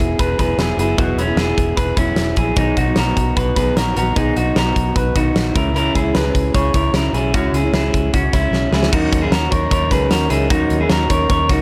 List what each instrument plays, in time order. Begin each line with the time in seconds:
Already playing: steel-string acoustic guitar B3 E4 G#4, clean electric guitar E4 G#4
0.00 fingered electric bass E1, closed hi-hat
0.19 fingered electric bass E1, clean electric guitar G#4 B4, kick, closed hi-hat
0.38 fingered electric bass E1, steel-string acoustic guitar F#3 B3 E4 G#4, clean electric guitar G#4 B4, kick, snare, closed hi-hat
0.57 fingered electric bass E1, steel-string acoustic guitar F#3 B3 E4 G#4, clean electric guitar E4 G#4, snare, closed hi-hat
0.77 fingered electric bass F#1, steel-string acoustic guitar F#3 B3 E4 G#4, clean electric guitar E4 G#4, closed hi-hat
0.97 fingered electric bass E1, steel-string acoustic guitar E3 F#3 B3 E4 G#4, clean electric guitar B3 F#4, kick, closed hi-hat
1.16 fingered electric bass E1, clean electric guitar C#4 E4, closed hi-hat
1.27 steel-string acoustic guitar B3 E4 G#4
1.36 fingered electric bass E1, clean electric guitar E4 G#4, snare, closed hi-hat
1.47 steel-string acoustic guitar B3 E4 G#4
1.58 fingered electric bass E1, kick, closed hi-hat
1.77 fingered electric bass E1, clean electric guitar G#4 B4, kick, closed hi-hat
1.97 fingered electric bass E1, steel-string acoustic guitar F#3 B3 E4 G#4, clean electric guitar C#4 E4, kick, closed hi-hat
2.16 fingered electric bass E1, steel-string acoustic guitar F#3 B3 E4 G#4, snare, closed hi-hat
2.36 fingered electric bass A#1, steel-string acoustic guitar F#3 B3 E4 G#4, clean electric guitar E4 G#4, kick, closed hi-hat
2.56 fingered electric bass B1, steel-string acoustic guitar B2 D#3 F#3 B3 D#4, clean electric guitar D#4 G#4, kick, closed hi-hat
2.77 fingered electric bass B1, clean electric guitar D#4 F#4, kick, closed hi-hat
2.87 steel-string acoustic guitar F#3 B3 D#4
2.96 fingered electric bass B1, clean electric guitar F#4 A#4, snare, closed hi-hat
3.05 steel-string acoustic guitar F#3 B3 D#4
3.16 fingered electric bass B1, kick, closed hi-hat
3.37 fingered electric bass B1, clean electric guitar F#4 B4, kick, closed hi-hat
3.55 fingered electric bass B1, steel-string acoustic guitar D#3 F#3 B3 D#4, clean electric guitar G#4 B4, kick, snare, closed hi-hat
3.75 fingered electric bass A#1, steel-string acoustic guitar D#3 F#3 B3 D#4, clean electric guitar F#4 A#4, snare, closed hi-hat
3.95 fingered electric bass A#1, steel-string acoustic guitar D#3 F#3 B3 D#4, clean electric guitar F#4 A#4, closed hi-hat
4.15 fingered electric bass B1, steel-string acoustic guitar B2 D#3 F#3 B3 D#4, clean electric guitar D#4 G#4, kick, closed hi-hat
4.36 fingered electric bass B1, clean electric guitar D#4 F#4, closed hi-hat
4.44 steel-string acoustic guitar F#3 B3 D#4
4.56 fingered electric bass B1, clean electric guitar F#4 A#4, snare, closed hi-hat
4.65 steel-string acoustic guitar F#3 B3 D#4
4.76 fingered electric bass B1, kick, closed hi-hat
4.95 fingered electric bass B1, clean electric guitar F#4 B4, kick, closed hi-hat
5.15 steel-string acoustic guitar D#3 F#3 B3 D#4, clean electric guitar D#4 F#4, kick, closed hi-hat
5.34 fingered electric bass A#1, steel-string acoustic guitar D#3 F#3 B3 D#4, snare, closed hi-hat
5.53 fingered electric bass C#2, steel-string acoustic guitar C#3 G#3 C#4 E4, clean electric guitar E4 A#4, kick, closed hi-hat
5.73 steel-string acoustic guitar C#3 G#3 C#4 E4, clean electric guitar E4 A#4, closed hi-hat
5.95 fingered electric bass C#2, clean electric guitar E4 G#4, kick, closed hi-hat
6.04 steel-string acoustic guitar G#3 C#4 E4
6.14 fingered electric bass C#2, clean electric guitar G#4 B4, snare, closed hi-hat
6.24 steel-string acoustic guitar G#3 C#4 E4
6.34 fingered electric bass C#2, kick, closed hi-hat
6.54 fingered electric bass C#2, clean electric guitar G#4 C#5, kick, closed hi-hat
6.73 fingered electric bass C#2, steel-string acoustic guitar C#3 G#3 C#4 E4, clean electric guitar A#4 C#5, kick, closed hi-hat
6.93 fingered electric bass C#2, steel-string acoustic guitar C#3 G#3 C#4 E4, clean electric guitar E4 A#4, snare, closed hi-hat
7.13 fingered electric bass B1, steel-string acoustic guitar C#3 G#3 C#4 E4, clean electric guitar E4 G#4, closed hi-hat
7.33 fingered electric bass C#2, steel-string acoustic guitar C#3 G#3 C#4 E4, clean electric guitar C#4 F#4, kick, closed hi-hat
7.52 fingered electric bass C#2, clean electric guitar E4 G#4, closed hi-hat
7.64 steel-string acoustic guitar G#3 C#4 E4
7.73 fingered electric bass C#2, clean electric guitar E4 G#4, snare, closed hi-hat
7.83 steel-string acoustic guitar G#3 C#4 E4
7.94 fingered electric bass C#2, kick, closed hi-hat
8.13 fingered electric bass C#2, clean electric guitar C#4 F#4, kick, closed hi-hat
8.33 fingered electric bass C#2, steel-string acoustic guitar C#3 G#3 C#4 E4, clean electric guitar C#4 E4, kick, snare, closed hi-hat
8.51 fingered electric bass B1, steel-string acoustic guitar C#3 G#3 C#4, snare
8.55 steel-string acoustic guitar E4
8.72 fingered electric bass C#2, steel-string acoustic guitar C#3 G#3 C#4 E4, clean electric guitar E4 G#4, snare
8.83 snare
8.92 fingered electric bass D#2, steel-string acoustic guitar D#3 F#3 C#4 D#4 A#4, clean electric guitar D#4 F#4, kick, crash
9.13 fingered electric bass D#2, kick, closed hi-hat
9.22 clean electric guitar E4 G#4
9.30 fingered electric bass D#2, clean electric guitar F#4 A#4, snare, closed hi-hat
9.51 fingered electric bass D#2, steel-string acoustic guitar F#3 C#4 D#4 A#4, clean electric guitar A#4 C#5, kick, closed hi-hat
9.71 fingered electric bass D#2, clean electric guitar A#4 C#5, kick, closed hi-hat
9.90 fingered electric bass C#2, steel-string acoustic guitar F#3 C#4 D#4 A#4, clean electric guitar G#4 B4, kick, snare, closed hi-hat
10.10 fingered electric bass D#2, steel-string acoustic guitar F#3 C#4 D#4 A#4, clean electric guitar F#4 A#4, snare, closed hi-hat
10.30 fingered electric bass C#2, steel-string acoustic guitar F#3 C#4 D#4 A#4, clean electric guitar E4 G#4, closed hi-hat
10.50 fingered electric bass D#2, steel-string acoustic guitar D#3 F#3 C#4 D#4 A#4, clean electric guitar D#4 F#4, kick, closed hi-hat
10.70 fingered electric bass D#2, closed hi-hat
10.81 clean electric guitar E4 G#4
10.90 fingered electric bass D#2, clean electric guitar F#4 A#4, snare, closed hi-hat
11.09 fingered electric bass D#2, steel-string acoustic guitar F#3 C#4 D#4 A#4, clean electric guitar A#4 C#5, kick, closed hi-hat
11.29 fingered electric bass D#2, clean electric guitar A#4 C#5, kick, closed hi-hat
11.49 fingered electric bass C#2, steel-string acoustic guitar F#3 C#4 D#4 A#4, clean electric guitar D#4 F#4, kick, snare, closed hi-hat